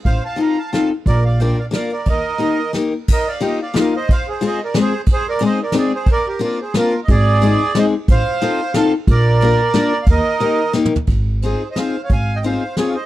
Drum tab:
CC |------------------|------------------|------------------|x-----------------|
RD |x-----x-----x-----|x-----x-----x--x--|x-----x-----x-----|------x-----x-----|
SD |------------o-----|------------o-----|------------o-----|------------o-----|
T2 |------------------|------------------|------------------|------------------|
FT |------------------|------------------|------------------|------------------|
BD |o-----------------|o-----------------|o-----------------|o-----------------|

CC |------------------|------------------|------------------|------------------|
RD |x-----x-----x-----|x-----x-----x-----|x-----x-----x-----|x-----x-----x-----|
SD |------------o-----|------------o-----|------------o-----|------------o-----|
T2 |------------------|------------------|------------------|------------------|
FT |------------------|------------------|------------------|------------------|
BD |o-----------------|o-----------------|o-----------------|o-----------------|

CC |------------------|------------------|------------------|------------------|
RD |x-----x-----x-----|x-----x-----x-----|x-----x-----------|x-----x-----x-----|
SD |------------o-----|------------o-----|------------o-----|------------o-----|
T2 |------------------|------------------|--------------o---|------------------|
FT |------------------|------------------|----------------o-|------------------|
BD |o-----------------|o-----------------|o-----------------|o-----------------|

CC |------------------|
RD |x-----x-----x-----|
SD |------------o-----|
T2 |------------------|
FT |------------------|
BD |o-----------------|